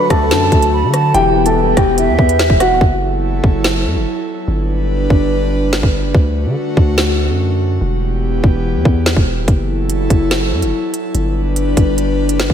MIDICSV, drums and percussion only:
0, 0, Header, 1, 2, 480
1, 0, Start_track
1, 0, Tempo, 416667
1, 1319, Time_signature, 4, 2, 24, 8
1, 14441, End_track
2, 0, Start_track
2, 0, Title_t, "Drums"
2, 119, Note_on_c, 9, 36, 102
2, 119, Note_on_c, 9, 37, 104
2, 119, Note_on_c, 9, 42, 75
2, 234, Note_off_c, 9, 36, 0
2, 234, Note_off_c, 9, 37, 0
2, 234, Note_off_c, 9, 42, 0
2, 359, Note_on_c, 9, 38, 120
2, 359, Note_on_c, 9, 42, 89
2, 474, Note_off_c, 9, 38, 0
2, 474, Note_off_c, 9, 42, 0
2, 599, Note_on_c, 9, 36, 101
2, 599, Note_on_c, 9, 42, 87
2, 714, Note_off_c, 9, 36, 0
2, 714, Note_off_c, 9, 42, 0
2, 720, Note_on_c, 9, 42, 73
2, 835, Note_off_c, 9, 42, 0
2, 1078, Note_on_c, 9, 37, 93
2, 1079, Note_on_c, 9, 42, 97
2, 1193, Note_off_c, 9, 37, 0
2, 1194, Note_off_c, 9, 42, 0
2, 1319, Note_on_c, 9, 42, 86
2, 1434, Note_off_c, 9, 42, 0
2, 1678, Note_on_c, 9, 42, 74
2, 1794, Note_off_c, 9, 42, 0
2, 2039, Note_on_c, 9, 36, 104
2, 2039, Note_on_c, 9, 37, 105
2, 2039, Note_on_c, 9, 42, 72
2, 2154, Note_off_c, 9, 36, 0
2, 2154, Note_off_c, 9, 37, 0
2, 2154, Note_off_c, 9, 42, 0
2, 2279, Note_on_c, 9, 42, 84
2, 2394, Note_off_c, 9, 42, 0
2, 2519, Note_on_c, 9, 36, 104
2, 2634, Note_off_c, 9, 36, 0
2, 2639, Note_on_c, 9, 42, 77
2, 2754, Note_off_c, 9, 42, 0
2, 2758, Note_on_c, 9, 38, 114
2, 2758, Note_on_c, 9, 42, 81
2, 2873, Note_off_c, 9, 38, 0
2, 2874, Note_off_c, 9, 42, 0
2, 2878, Note_on_c, 9, 36, 106
2, 2993, Note_off_c, 9, 36, 0
2, 2998, Note_on_c, 9, 37, 95
2, 2999, Note_on_c, 9, 42, 95
2, 3114, Note_off_c, 9, 37, 0
2, 3114, Note_off_c, 9, 42, 0
2, 3239, Note_on_c, 9, 36, 116
2, 3354, Note_off_c, 9, 36, 0
2, 3959, Note_on_c, 9, 36, 99
2, 4074, Note_off_c, 9, 36, 0
2, 4198, Note_on_c, 9, 38, 118
2, 4314, Note_off_c, 9, 38, 0
2, 5879, Note_on_c, 9, 36, 95
2, 5994, Note_off_c, 9, 36, 0
2, 6599, Note_on_c, 9, 38, 109
2, 6714, Note_off_c, 9, 38, 0
2, 6718, Note_on_c, 9, 36, 102
2, 6834, Note_off_c, 9, 36, 0
2, 7079, Note_on_c, 9, 36, 117
2, 7195, Note_off_c, 9, 36, 0
2, 7799, Note_on_c, 9, 36, 100
2, 7915, Note_off_c, 9, 36, 0
2, 8039, Note_on_c, 9, 38, 113
2, 8154, Note_off_c, 9, 38, 0
2, 9719, Note_on_c, 9, 36, 99
2, 9835, Note_off_c, 9, 36, 0
2, 10199, Note_on_c, 9, 36, 102
2, 10314, Note_off_c, 9, 36, 0
2, 10439, Note_on_c, 9, 38, 109
2, 10555, Note_off_c, 9, 38, 0
2, 10558, Note_on_c, 9, 36, 102
2, 10674, Note_off_c, 9, 36, 0
2, 10919, Note_on_c, 9, 36, 114
2, 10920, Note_on_c, 9, 42, 86
2, 11035, Note_off_c, 9, 36, 0
2, 11035, Note_off_c, 9, 42, 0
2, 11399, Note_on_c, 9, 42, 90
2, 11515, Note_off_c, 9, 42, 0
2, 11639, Note_on_c, 9, 36, 98
2, 11639, Note_on_c, 9, 42, 81
2, 11754, Note_off_c, 9, 36, 0
2, 11755, Note_off_c, 9, 42, 0
2, 11878, Note_on_c, 9, 38, 116
2, 11879, Note_on_c, 9, 42, 80
2, 11994, Note_off_c, 9, 38, 0
2, 11994, Note_off_c, 9, 42, 0
2, 12239, Note_on_c, 9, 42, 77
2, 12354, Note_off_c, 9, 42, 0
2, 12600, Note_on_c, 9, 42, 92
2, 12715, Note_off_c, 9, 42, 0
2, 12840, Note_on_c, 9, 42, 90
2, 12955, Note_off_c, 9, 42, 0
2, 13320, Note_on_c, 9, 42, 89
2, 13435, Note_off_c, 9, 42, 0
2, 13560, Note_on_c, 9, 36, 95
2, 13560, Note_on_c, 9, 42, 77
2, 13675, Note_off_c, 9, 36, 0
2, 13675, Note_off_c, 9, 42, 0
2, 13800, Note_on_c, 9, 42, 80
2, 13916, Note_off_c, 9, 42, 0
2, 14160, Note_on_c, 9, 42, 74
2, 14275, Note_off_c, 9, 42, 0
2, 14280, Note_on_c, 9, 38, 111
2, 14280, Note_on_c, 9, 42, 74
2, 14395, Note_off_c, 9, 38, 0
2, 14395, Note_off_c, 9, 42, 0
2, 14399, Note_on_c, 9, 36, 104
2, 14441, Note_off_c, 9, 36, 0
2, 14441, End_track
0, 0, End_of_file